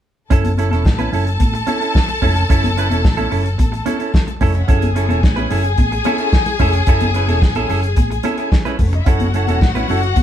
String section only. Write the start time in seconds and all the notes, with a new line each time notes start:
0.31 A4 A5
4.41 C#4 C#5
4.49 D#4 D#5
4.55 E4 E5
4.62 F#4 F#5
4.69 G#4 G#5
8.66 G#3 G#4
8.73 A3 A4
8.80 B3 B4
8.86 C#4 C#5
8.93 D#4 D#5
9.00 E4 E5
9.06 F#4 F#5